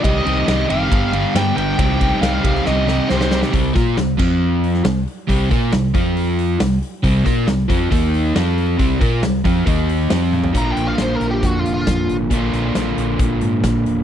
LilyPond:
<<
  \new Staff \with { instrumentName = "Lead electric guitar" } { \time 4/4 \key c \minor \tempo 4 = 137 ees''4. f''4. g''8 g''8~ | g''4 f''4 ees''4 c''8. r16 | r1 | r1 |
r1 | r1 | \tuplet 3/2 { bes''8 g''8 f''8 c''8 bes'8 g'8 fis'8 f'8 f'8~ } f'8 r8 | r1 | }
  \new Staff \with { instrumentName = "Overdriven electric guitar" } { \time 4/4 \key c \minor <c ees g c' g'>8 <c ees g c' g'>8 <c ees g c' g'>8 <c ees g c' g'>8 <g, d g b d' g'>8 <g, d g b d' g'>8 <g, d g b d' g'>8 <g, d g b d' g'>8 | <c g c' ees' g'>8 <c g c' ees' g'>8 <c g c' ees' g'>8 <c g c' ees' g'>8 <c g c' ees' g'>8 <c g c' ees' g'>8 <c g c' ees' g'>8 <c g c' ees' g'>8 | <c g c'>8 <bes f' bes'>8 <c g>8 <f c' f'>4. <c g>8 r8 | <c g c'>8 <bes f' bes'>8 <c g>8 <f c' f'>4. <c g>8 r8 |
<c g c'>8 <bes f' bes'>8 <c g>8 <f c' f'>8 <ees bes ees'>4 <f c' f'>4 | <c g c'>8 <bes f' bes'>8 <c g>8 <f c' f'>8 <ees bes ees'>4 <f c' f'>4 | <bes, d bes d' f'>1 | <bes, d bes d' f'>1 | }
  \new Staff \with { instrumentName = "Fingered electric bass" } { \clef bass \time 4/4 \key c \minor c,8 c,8 c,8 fis,,8 g,,4 g,8 g,,8 | c,4 c,8 c,8 c,4 c,4 | c,8 bes,8 c,8 f,4. c,8 r8 | c,8 bes,8 c,8 f,4. c,8 r8 |
c,8 bes,8 c,8 f,8 ees,4 f,4 | c,8 bes,8 c,8 f,8 ees,4 f,4 | bes,,8 bes,,8 bes,,8 bes,,8 f,8 f,,8 f,8 aes,,8 | bes,,8 bes,,8 bes,,8 bes,,8 bes,,8 aes,8 bes,,8 e,,8 | }
  \new DrumStaff \with { instrumentName = "Drums" } \drummode { \time 4/4 <bd cymr>8 cymr8 <cymr sn>8 cymr8 <bd cymr>8 cymr8 <cymr sn>8 cymr8 | <bd cymr>8 <bd cymr>8 <cymr sn>8 <bd cymr>16 sn16 sn8 sn8 sn16 sn16 sn16 sn16 | <hho bd>8 <hho bd sn>8 <hho sn>8 <cymc bd>8 r8 hho16 sn16 <hho sn>8 hho8 | <hho bd>8 <hho bd>8 <hho sn>8 <hho bd>8 hho8 hho8 <hho sn>8 hho8 |
<hho bd>8 <hho bd sn>8 <hho sn>8 <hho bd>8 <hho bd>8 hho8 <hho sn>8 hho8 | <hho bd>8 <hho bd>8 <hho sn>8 <hho bd>8 <hho bd>8 hho8 <hho sn>8 tommh16 tomfh16 | <hh bd>8 hh8 <hh sn>8 hh8 <hh bd>8 hh8 <hh bd sn>8 hh8 | <hh bd>8 <hh sn>8 <hh sn>8 hh8 <hh bd>8 hh8 <hh bd sn>8 hh8 | }
>>